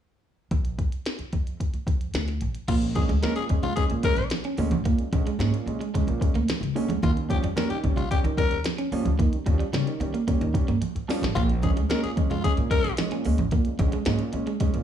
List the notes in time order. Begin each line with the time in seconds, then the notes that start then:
0.51 A#1, kick, closed hi-hat
0.65 closed hi-hat
0.79 kick, closed hi-hat
0.92 closed hi-hat
1.06 snare, closed hi-hat
1.19 muted upright bass stroke, closed hi-hat
1.33 F2, kick, closed hi-hat
1.47 closed hi-hat
1.60 kick, closed hi-hat
1.74 muted upright bass stroke, closed hi-hat
1.87 F2, kick, closed hi-hat
2.01 closed hi-hat
2.14 D2, snare, closed hi-hat
2.28 snare, closed hi-hat
2.41 A#1, closed hi-hat
2.55 closed hi-hat
2.68 A#1 A#2 A#3 F4, kick, closed hi-hat, crash
2.82 G#3 C#4, closed hi-hat
2.95 D3 G#3 C#4 G#4, muted clean electric guitar stroke, kick, closed hi-hat, muted conga
3.09 D2 G#3, closed hi-hat
3.22 G#3 A#3 C#4 A#4, snare, closed hi-hat, high conga
3.36 A#2 G#4, muted upright bass stroke, closed hi-hat
3.49 F2 G#3 C#4, muted clean electric guitar stroke, kick, closed hi-hat
3.63 G#3 F4, closed hi-hat, low conga
3.76 G#3 C#4 G#4, muted upright bass stroke, kick, closed hi-hat, muted conga
3.90 A#2, closed hi-hat
4.03 G#3 C#4 A#4, kick, closed hi-hat
4.17 A#1, closed hi-hat
4.30 muted clean electric guitar stroke, snare, closed hi-hat, high conga
4.44 C#4, snare, closed hi-hat
4.57 D2 D3 G#3 A#3 C#4, open hi-hat
4.71 A1, closed hi-hat, high conga
4.85 A#2 A#3, kick, closed hi-hat, muted conga
4.99 G#3 C#4, closed hi-hat
5.13 A#1 D3 G#3 C#4, muted clean electric guitar stroke, kick, closed hi-hat, muted conga
5.27 G#3, closed hi-hat
5.39 G#2 G#3 A#3 C#4, snare, closed hi-hat, high conga
5.53 A#2, closed hi-hat
5.66 A#2 G#3 C#4, muted clean electric guitar stroke, closed hi-hat
5.81 G#3, closed hi-hat
5.94 G#3 C#4, kick, closed hi-hat, muted conga, low conga
6.07 A#1 A#2, closed hi-hat
6.21 G#3 C#4, muted clean electric guitar stroke, kick, closed hi-hat
6.34 D2 A#3, closed hi-hat
6.48 muted upright bass stroke, muted clean electric guitar stroke, snare, closed hi-hat, high conga
6.61 C#2, snare, closed hi-hat
6.75 D3 G#3 A#3 C#4, open hi-hat
6.88 D2 G#3, closed hi-hat, high conga
7.03 D#2 D#3 A#3 F4, kick, closed hi-hat, muted conga
7.16 G3 C#4, closed hi-hat
7.29 F3 G3 C#4 G4, muted clean electric guitar stroke, kick, closed hi-hat, muted conga
7.42 F2 G3, closed hi-hat
7.56 G3 A#3 C#4 A#4, snare, closed hi-hat, high conga
7.70 D#3 G4, muted upright bass stroke, closed hi-hat
7.83 A#1 G3 C#4, muted clean electric guitar stroke, kick, closed hi-hat
7.97 G3 F4, closed hi-hat, low conga
8.11 G3 C#4 G4, muted upright bass stroke, kick, closed hi-hat, muted conga
8.24 D#3, closed hi-hat
8.37 G3 C#4 A#4, kick, closed hi-hat
8.51 D#2, closed hi-hat
8.64 muted clean electric guitar stroke, snare, closed hi-hat, high conga
8.78 C#4, snare, closed hi-hat
8.92 G2 F3 G3 A#3 C#4, open hi-hat
9.05 D2, closed hi-hat, high conga
9.19 D#3 A#3, kick, closed hi-hat, muted conga
9.33 G3 C#4, closed hi-hat
9.46 D#2 F3 G3 C#4, muted clean electric guitar stroke, kick, closed hi-hat, muted conga
9.59 G3, closed hi-hat
9.73 C#3 G3 C#4, snare, closed hi-hat, high conga
9.86 D#3, closed hi-hat
10.00 D#3 G3 C#4, muted clean electric guitar stroke, closed hi-hat
10.14 A#3, closed hi-hat
10.27 G3 A#3 C#4, kick, closed hi-hat, muted conga, low conga
10.41 D#2 D#3, closed hi-hat
10.54 G3 C#4, muted clean electric guitar stroke, kick, closed hi-hat, low conga
10.68 G2 A#3, closed hi-hat
10.82 muted clean electric guitar stroke, muted upright bass stroke, closed hi-hat, high conga
10.95 F2, closed hi-hat
11.08 F3 G3 C#4, snare, open hi-hat
11.22 A1 G3, snare, closed hi-hat, high conga
11.35 A#1 A#2 A#3 F4, kick, closed hi-hat, muted conga
11.50 G#3 C#4, closed hi-hat
11.62 D3 G#3 C#4 G#4, muted clean electric guitar stroke, kick, closed hi-hat, muted conga
11.76 D2 G#3, closed hi-hat
11.90 G#3 A#3 C#4 A#4, snare, closed hi-hat, high conga
12.02 A#2 G#4, muted upright bass stroke, closed hi-hat
12.16 F2 G#3 C#4, muted clean electric guitar stroke, kick, closed hi-hat
12.30 G#3 F4, closed hi-hat, low conga
12.44 G#3 C#4 G#4, muted upright bass stroke, kick, closed hi-hat, muted conga
12.57 A#2, closed hi-hat
12.71 G#3 C#4 A#4, kick, closed hi-hat
12.84 A#1, closed hi-hat
12.97 G#3 C#4, muted clean electric guitar stroke, snare, closed hi-hat, high conga
13.11 A#2 C#4, snare, closed hi-hat
13.25 D2 G#3 A#3 C#4, open hi-hat
13.38 A1, closed hi-hat, high conga
13.51 A#2 A#3, kick, closed hi-hat
13.65 G#3 C#4, closed hi-hat
13.79 A#1 D3 G#3 C#4, muted clean electric guitar stroke, kick, closed hi-hat, muted conga
13.92 G#3, closed hi-hat
14.05 G#2 G#3 A#3 C#4, snare, closed hi-hat, high conga
14.19 A#2, closed hi-hat
14.33 A#2 G#3 C#4, muted clean electric guitar stroke, closed hi-hat
14.47 G#3, closed hi-hat
14.60 G#3 C#4, kick, closed hi-hat, muted conga, low conga
14.74 A#1 A#2, closed hi-hat